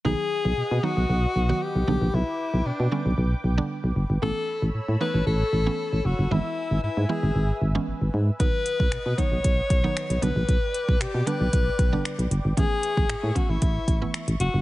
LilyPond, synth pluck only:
\new Staff \with { instrumentName = "Synth pluck" } { \time 4/4 \key b \mixolydian \tempo 4 = 115 <dis fis b dis'>4~ <dis fis b dis'>16 r16 <dis fis b dis'>4 r16 <dis fis b fis'>8. <d g b d'>8~ | <d g b d'>4~ <d g b d'>16 r16 <d g b cis'>4 r16 <d g b d'>4 r16 | <e a b cis'>4~ <e a b cis'>16 r16 <e a b dis'>4 r16 <e a b cis'>4 r16 | <e gis b e'>4~ <e gis b e'>16 r16 <e gis b e'>4 r16 <e gis b cis'>4 r16 |
<dis fis b dis'>4~ <dis fis b dis'>16 r16 <dis fis b dis'>4 r16 <dis fis b dis'>8. <d g b d'>8~ | <d g b d'>4~ <d g b d'>16 r16 <d g b d'>4 r16 <d g b d'>4 r16 | <e a b cis'>4~ <e a b cis'>16 r16 <e a b cis'>4 r16 <e a b e'>4 r16 | }